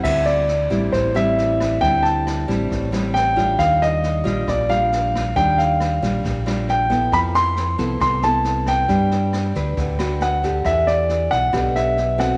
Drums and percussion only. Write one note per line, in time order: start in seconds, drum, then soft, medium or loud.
0.04 kick soft
0.04 cross-stick medium
0.04 snare soft
0.04 crash medium
0.26 snare soft
0.48 snare soft
0.71 kick soft
0.71 snare soft
0.93 kick medium
0.93 cross-stick medium
0.93 snare soft
1.16 snare soft
1.38 snare soft
1.60 kick soft
1.60 cross-stick medium
1.60 snare soft
1.82 kick medium
1.82 snare soft
2.05 snare soft
2.27 cross-stick medium
2.27 snare soft
2.49 kick soft
2.49 snare soft
2.71 kick medium
2.71 snare soft
2.93 cross-stick medium
2.93 snare soft
3.15 snare soft
3.37 kick soft
3.37 snare soft
3.59 kick medium
3.59 cross-stick medium
3.59 snare soft
3.82 snare soft
4.03 snare soft
4.26 kick soft
4.26 snare soft
4.48 kick medium
4.48 cross-stick medium
4.48 snare soft
4.70 snare soft
4.92 snare soft
5.14 kick soft
5.14 cross-stick medium
5.14 snare soft
5.36 kick medium
5.36 snare soft
5.59 snare soft
5.80 cross-stick medium
5.80 snare soft
6.02 kick soft
6.02 snare soft
6.24 kick medium
6.24 snare soft
6.47 cross-stick medium
6.47 snare soft
6.68 snare soft
6.90 kick soft
6.90 snare soft
7.12 kick medium
7.12 cross-stick soft
7.12 snare soft
7.35 snare soft
7.57 snare soft
7.79 kick soft
7.79 snare soft
8.01 kick medium
8.01 cross-stick medium
8.01 snare soft
8.22 snare soft
8.44 snare soft
8.66 kick soft
8.66 cross-stick medium
8.66 snare soft
8.89 kick medium
8.89 snare soft
9.11 snare soft
9.33 cross-stick medium
9.33 snare soft
9.55 kick soft
9.55 snare soft
9.77 kick medium
9.77 snare soft
9.99 cross-stick medium
9.99 snare soft
10.21 snare soft
10.43 kick soft
10.43 snare soft
10.65 kick medium
10.65 cross-stick medium
10.65 snare soft
10.87 snare soft
11.09 snare soft
11.32 kick soft
11.32 snare soft
11.53 kick medium
11.53 cross-stick medium
11.53 snare soft
11.75 snare soft
11.97 snare soft
12.19 kick soft
12.19 cross-stick medium
12.19 snare soft